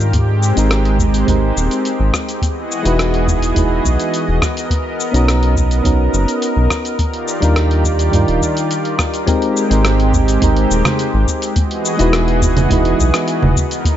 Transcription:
Already playing: analog synth bass G#2, analog synth pad D#3 F4 G4 D5, synth keys G3 D4 D#4 F4 A#4
0.00 shaker
0.13 analog synth pad G#3 C4, kick, closed hi-hat, shaker
0.43 shaker
0.55 analog synth bass G#1, synth keys G#3 C4 D#4 G4, closed hi-hat, shaker
0.59 synth keys A#4
0.71 cross-stick, closed hi-hat, shaker
0.85 closed hi-hat
0.99 kick, shaker
1.14 closed hi-hat, shaker
1.25 analog synth bass G#1, synth keys G#3 C4 D#4 G4, kick, closed hi-hat, shaker
1.30 synth keys A#4
1.57 analog synth bass D#1, shaker
1.71 closed hi-hat, shaker
1.85 closed hi-hat, shaker
2.00 analog synth bass G#1
2.13 kick, cross-stick, shaker
2.29 closed hi-hat, shaker
2.42 analog synth pad E3 B3 F#4 G#4 D#5, kick, closed hi-hat, shaker
2.72 shaker
2.83 analog synth bass E1, synth keys G#3 D#4 E4 F#4, closed hi-hat, shaker
2.87 synth keys B4
2.99 cross-stick, closed hi-hat, shaker
3.14 closed hi-hat
3.28 kick, shaker
3.42 closed hi-hat, shaker
3.54 analog synth bass E1, synth keys G#3 D#4 E4 F#4, kick, closed hi-hat, shaker
3.59 synth keys B4
3.85 analog synth bass B1, kick, shaker
4.00 closed hi-hat, shaker
4.14 closed hi-hat, shaker
4.28 analog synth bass E1
4.41 analog synth pad B3 A#4, kick, cross-stick, shaker
4.57 closed hi-hat, shaker
4.70 kick, closed hi-hat, shaker
5.00 shaker
5.12 analog synth bass B1, synth keys B3 C#4 D#4 F#4, closed hi-hat, shaker
5.16 synth keys A#4
5.28 cross-stick, closed hi-hat, shaker
5.43 closed hi-hat
5.56 kick, shaker
5.71 closed hi-hat, shaker
5.83 analog synth bass B1, synth keys B3 C#4 D#4 F#4, kick, closed hi-hat, shaker
5.87 synth keys A#4
6.13 analog synth bass F#1, shaker
6.28 closed hi-hat, shaker
6.42 closed hi-hat, shaker
6.56 analog synth bass B1
6.70 kick, cross-stick, shaker
6.85 closed hi-hat, shaker
6.98 analog synth pad D#3 F4 G4 D5, kick, closed hi-hat, shaker
7.14 closed hi-hat
7.28 shaker
7.40 analog synth bass D#2, synth keys G3 D4 D#4 F4, closed hi-hat, shaker
7.45 synth keys A#4
7.56 cross-stick, closed hi-hat, shaker
7.71 closed hi-hat
7.85 kick, shaker
7.99 closed hi-hat, shaker
8.11 analog synth bass G2, synth keys G3 D4 D#4 F4, kick, closed hi-hat, shaker
8.15 synth keys A#4
8.28 analog synth bass D#1, closed hi-hat
8.42 kick, shaker
8.57 closed hi-hat, shaker
8.71 closed hi-hat, shaker
8.85 closed hi-hat
8.99 kick, cross-stick, shaker
9.14 closed hi-hat, shaker
9.26 synth keys G#3 C4 D#4 G4 A#4, analog synth pad G#3 C4 G4, kick, closed hi-hat, shaker
9.42 closed hi-hat
9.57 shaker
9.69 analog synth bass G#1, synth keys G#3 C4 D#4 G4, closed hi-hat, shaker
9.73 synth keys A#4
9.85 cross-stick, closed hi-hat, shaker
10.00 closed hi-hat
10.13 kick, shaker
10.28 closed hi-hat, shaker
10.40 analog synth bass G#1, synth keys G#3 C4 D#4 G4, kick, closed hi-hat, shaker
10.44 synth keys A#4
10.56 closed hi-hat
10.70 analog synth bass D#1, shaker
10.85 cross-stick, closed hi-hat, low conga, shaker
10.99 closed hi-hat, shaker
11.14 analog synth bass G#1
11.28 kick, shaker
11.42 closed hi-hat, shaker
11.56 analog synth pad E3 B3 F#4 G#4 D#5, kick, closed hi-hat, shaker
11.71 closed hi-hat
11.85 shaker
11.97 analog synth bass E1, synth keys G#3 D#4 E4 F#4, closed hi-hat, shaker
12.01 synth keys B4
12.13 cross-stick, closed hi-hat, shaker
12.28 closed hi-hat
12.42 kick, shaker
12.57 closed hi-hat, low conga, shaker
12.69 analog synth bass E1, synth keys G#3 D#4 E4 F#4, kick, closed hi-hat, shaker
12.73 synth keys B4
12.85 closed hi-hat
12.99 analog synth bass B1, kick, shaker
13.14 cross-stick, closed hi-hat, shaker
13.28 closed hi-hat, shaker
13.42 analog synth bass E1, low conga
13.56 analog synth pad D#4 A#4, kick, shaker
13.71 closed hi-hat, shaker
13.85 kick, closed hi-hat, shaker

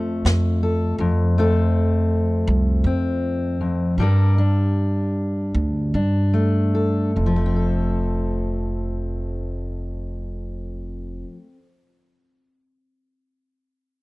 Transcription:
Already playing: steel-string acoustic guitar F2 F3 A3 A4
0.25 upright bass F2, snare
0.63 steel-string acoustic guitar A4
0.99 upright bass F2, steel-string acoustic guitar F2
1.38 steel-string acoustic guitar A3 C4 A4
2.48 upright bass C2
2.84 upright bass F2, steel-string acoustic guitar C4
3.61 steel-string acoustic guitar F2
3.98 upright bass G2, steel-string acoustic guitar G2 G3 D4
4.02 steel-string acoustic guitar A#4
4.38 steel-string acoustic guitar D4
5.55 upright bass D2
5.94 upright bass G2, steel-string acoustic guitar D4
6.34 steel-string acoustic guitar A3
6.75 steel-string acoustic guitar A4
7.16 upright bass F1, steel-string acoustic guitar F2
7.26 steel-string acoustic guitar F3
7.36 steel-string acoustic guitar A3
7.46 steel-string acoustic guitar C4
7.56 steel-string acoustic guitar A4

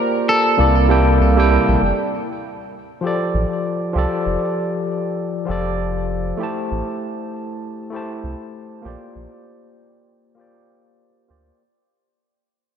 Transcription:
Already playing: tine electric piano A#3 F4 G4 C5 D5, clean electric guitar A#4
0.29 clean electric guitar A4
0.57 analog synth bass C2, tine electric piano C3 G3 A#3 E4 A4 D5
0.88 tine electric piano C3 G3 A#3 E4 A4 G5
1.20 analog synth bass C2
1.36 tine electric piano C3 G3 A#3 E4 A4 G5
1.68 analog synth bass A#1
1.81 analog synth bass F1
3.01 tine electric piano F3 F4 G4
3.05 tine electric piano A4 D5
3.34 analog synth bass A1
3.93 analog synth bass C2, tine electric piano F3 F4 G4
3.97 tine electric piano A4 D5
4.26 analog synth bass F1
5.45 analog synth bass F1, tine electric piano F3 F4 G4
5.50 tine electric piano A4 D5
6.37 tine electric piano A3 E4 G4
6.42 tine electric piano C5 A5
6.71 analog synth bass A1
7.90 tine electric piano A3 E4 G4
7.95 tine electric piano C5 A5
8.23 analog synth bass C2
8.82 analog synth bass A#1, tine electric piano A#3 F4 G4
8.86 tine electric piano C5 D5
9.15 analog synth bass A#1
10.35 tine electric piano A#3 F4 G4
10.39 tine electric piano C5 D5
11.28 analog synth bass D2, tine electric piano A#3 F4 G4 C5 D5

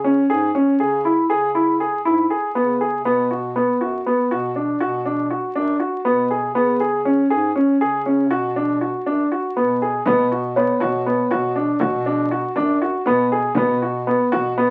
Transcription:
Already playing: bass clarinet C#3
0.04 grand piano C#4
0.30 bass clarinet G#2, grand piano G#4
0.55 grand piano C#4
0.80 bass clarinet C#3, grand piano G#4
1.05 grand piano E4
1.30 bass clarinet C#3, grand piano G#4
1.55 grand piano E4
1.80 grand piano G#4
2.05 bass clarinet G#2, grand piano E4
2.30 grand piano G#4
2.55 bass clarinet C#3, grand piano B3
2.81 grand piano G#4
3.05 bass clarinet B2, grand piano B3
3.31 grand piano F#4
3.56 grand piano B3
3.80 bass clarinet F#2, grand piano F#4
4.06 grand piano B3
4.30 bass clarinet B2, grand piano F#4
4.56 grand piano D4
4.80 bass clarinet B2, grand piano F#4
5.06 grand piano D4
5.30 grand piano F#4
5.55 bass clarinet F#2, grand piano D4
5.80 grand piano F#4
6.05 bass clarinet B2, grand piano B3
6.30 grand piano G#4
6.55 bass clarinet C#3, grand piano B3
6.80 grand piano G#4
7.05 grand piano C#4
7.30 bass clarinet G#2, grand piano G#4
7.56 grand piano C#4
7.80 bass clarinet C#3, grand piano G#4
8.06 grand piano C#4
8.31 bass clarinet B2, grand piano F#4
8.56 grand piano D4
8.81 grand piano F#4
9.06 bass clarinet F#2, grand piano D4
9.32 grand piano F#4
9.56 bass clarinet B2, grand piano B3
9.82 grand piano G#4
10.05 bass clarinet B2, grand piano B3, frame drum
10.32 grand piano F#4
10.56 grand piano B3, celesta C#5
10.80 bass clarinet B2, grand piano F#4, frame drum
11.06 grand piano B3
11.31 bass clarinet B2, grand piano F#4, frame drum
11.56 grand piano D4, frame drum
11.80 bass clarinet B2, grand piano F#4, frame drum
12.06 grand piano D4
12.31 grand piano F#4
12.56 bass clarinet F#2, grand piano D4, frame drum
12.82 grand piano F#4
13.06 bass clarinet B2, grand piano B3, frame drum
13.30 grand piano G#4, frame drum
13.55 bass clarinet B2, grand piano B3, frame drum
13.82 grand piano F#4
14.07 grand piano B3
14.31 bass clarinet B2, grand piano F#4, frame drum
14.58 grand piano B3

